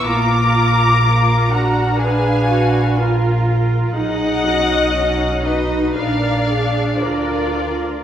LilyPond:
<<
  \new Staff \with { instrumentName = "Violin section" } { \time 4/4 \key bes \phrygian \tempo 4 = 60 d'''4. bes''8 aes''4. r8 | fis''4. dis''8 f''4 d''4 | }
  \new Staff \with { instrumentName = "Violin section" } { \time 4/4 \key bes \phrygian bes''4. ges''8 f''4. r8 | dis''4. b'8 d''4 bes'4 | }
  \new Staff \with { instrumentName = "Viola section" } { \time 4/4 \key bes \phrygian << { bes'4 bes'4 ces''8 ces''8 bes'4 | aes'8 fis'8 fis'4 bes'8 aes'8 bes'8 f'8 | } \\ { bes4 bes8 d'4. f'8 f'8 | dis'4 des'8 dis'8 d'2 | } >> }
  \new Staff \with { instrumentName = "Cello section" } { \time 4/4 \key bes \phrygian f'4 f'8 ges'8 aes'8 ges'8 f'4 | dis'8 des'8 dis'4 d'4 f'4 | }
  \new Staff \with { instrumentName = "Double bass section" } { \clef bass \time 4/4 \key bes \phrygian bes,,1 | b,,2 bes,,4 d,4 | }
>>